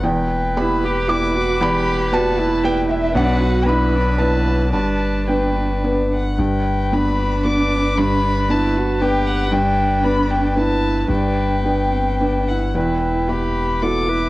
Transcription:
<<
  \new Staff \with { instrumentName = "Violin" } { \time 3/4 \key g \major \tempo 4 = 113 g''4 b''4 d'''4 | b''4 a''4 g''8 e''8 | fis''4 b''4 a''4 | a''4 g''4 r8 fis''8 |
g''4 b''4 d'''4 | b''4 a''4 g''8 fis''8 | g''4 b''8 g''8 a''4 | g''2~ g''8 fis''8 |
g''4 b''4 d'''4 | }
  \new Staff \with { instrumentName = "Viola" } { \time 3/4 \key g \major b'2.~ | b'2. | b'4 b'2 | b'4 b'4. r8 |
b'2.~ | b'2.~ | b'2. | b'2~ b'8 r8 |
b'8 b'4. a'8 b'8 | }
  \new Staff \with { instrumentName = "Cello" } { \time 3/4 \key g \major r4 e'8 g'8 e'8 fis'8 | g'4 fis'8 e'4. | d'8 fis'8 e'8 d'8 e'4 | d'2~ d'8 r8 |
r4 d'2~ | d'4 e'8 fis'8 g'4 | d'2 e'4 | d'4 b8 c'8 d'8 e'8 |
e'4 g'4 fis'8 e'8 | }
  \new Staff \with { instrumentName = "Felt piano" } { \time 3/4 \key g \major << { g''4 b''4 d'''4 | b''4 a''4 g''8 e''8 | fis''4 b''4 a''4 | a''4 g''4 r4 |
r2. | r2. | r2. | r2. |
r2. | } \\ { e,4 <b g' b'>4 <b g' b'>4 | e,4 <b g' b'>4 <b g' b'>4 | b,,4 <b d' b'>4 <b d' b'>4 | g,4 <b d' b'>4 <b d' b'>4 |
g,4 <b d' b'>4 <b d' b'>4 | g,4 <b d' b'>4 <b d' b'>4 | g,4 <b d' b'>4 <b d' b'>4 | g,4 <b d' b'>4 <b d' b'>4 |
e,4 <b e' b'>4 <b e' b'>4 | } >> }
  \new Staff \with { instrumentName = "Sub bass" } { \clef bass \time 3/4 \key g \major e,,2.~ | e,,2. | b,,2. | g,,2. |
g,,2.~ | g,,2.~ | g,,2. | g,,2. |
e,,2. | }
>>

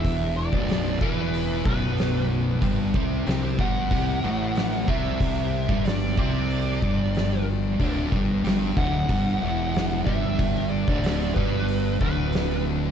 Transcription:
<<
  \new Staff \with { instrumentName = "Lead electric guitar" } { \time 4/4 \key g \major \tempo 4 = 93 e''8 d''4 b'4 b'4 r8 | r4. fis''2 e''8~ | e''4 d''8 d''2 r8 | r4. fis''2 e''8~ |
e''8 d''4 b'4 b'4 r8 | }
  \new Staff \with { instrumentName = "Distorted electric guitar" } { \clef bass \time 4/4 \key g \major <e, e>8. <b,, b,>8. <e, e>4 <b,, b,>4. | <g, g>8 <c c'>8 <c c'>8 <g, g>8 <c c'>8 <a, a>4 <c c'>8~ | <c c'>8. <g, g>8. <c c'>4 <g, g>4. | <d, d>8 <g, g>8 <g, g>8 <d, d>8 <g, g>8 <e, e>4 <g, g>8~ |
<g, g>8. <d, d>8. <g, g>4 <d, d>4. | }
  \new Staff \with { instrumentName = "Fingered electric bass" } { \clef bass \time 4/4 \key g \major e,,8. b,,,8. r4 b,,,4. | g,,8 c,8 c,8 g,,8 c,8 a,,4 c,8~ | c,8. g,,8. c,4 g,,4. | d,,8 g,,8 g,,8 d,,8 g,,8 e,,4 g,,8~ |
g,,8. d,,8. g,,4 d,,4. | }
  \new DrumStaff \with { instrumentName = "Drums" } \drummode { \time 4/4 <hho bd>8. bd16 <hho sn>8 bd8 hho8 bd8 <hho sn>4 | <hho bd>8 bd8 <hho sn>8 bd8 <hho bd>4 <hho sn>8 bd8 | <hho bd>8. bd16 <hho sn>8 bd8 hho8 bd8 <hho sn>4 | <hho bd>8 bd8 <hho sn>8 bd8 <hho bd>4 <hho sn>8 bd8 |
<hho bd>8. bd16 <hho sn>8 bd8 hho8 bd8 <hho sn>4 | }
>>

